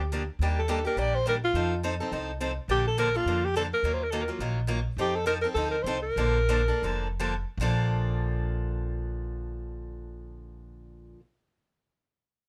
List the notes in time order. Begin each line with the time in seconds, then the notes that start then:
Already playing: D2 G4
0.12 D3 F3 A#3 D4 G4
0.39 D#2 D#3 G3 A#3 D4 G4
0.59 A4
0.68 D#3 G3 A#3 D4 G4 A4
0.85 A#3 D4 G4 A#4
0.96 A#1 D#3 G3 A#3 D4 G4 D5
1.15 C5
1.26 D#3 G3 A#3 D4 G4 A#4
1.44 F4
1.54 F2 F3 C4 D#4 A4
1.83 F3 C4 D#4 A4
2.00 C4 D#4 A4
2.12 C2 F3 C4 D#4 A4
2.40 F3 C4 D#4 A4
2.68 A#1 D3 F3 A#3 D4 G4 A4
2.87 A4
2.98 D3 F3 A#3 D4 A4 A#4
3.15 A#3 D4 F4 A4
3.25 F2 D3 F3 A#3 D4 A4
3.45 G4
3.56 D3 F3 A#3 D4 A4
3.73 A#4
3.83 D#2 D#3 F#3 A#3 F4
3.94 C5
4.03 A#4
4.11 D#3 F#3 A#3 F4 A4
4.22 A#4
4.28 F#3 A#3 F4
4.39 A#1 D#3 F#3 A#3 F4
4.67 D#3 F#3 A#3 F4
4.97 F2 F3 C4 D#4 G4 A4
5.16 A4
5.26 F3 C4 D#4 A4 A#4
5.41 C4 D#4 A4 A#4
5.53 D2 F3 C4 D#4 A4
5.71 A#4
5.83 C2 F3 C4 C5
5.87 D#4 A4
6.02 A#4
6.16 A#1 D3 F3 A#3 D4 A4
6.49 D3 F3 A#3 D4 A4
6.68 A#3 D4 A4
6.82 F1 D3 F3 A#3 D4 A4
7.20 D3 F3 A#3 D4 A4
7.57 A#1 A#2 D3 F3 D4
7.62 A#3 A4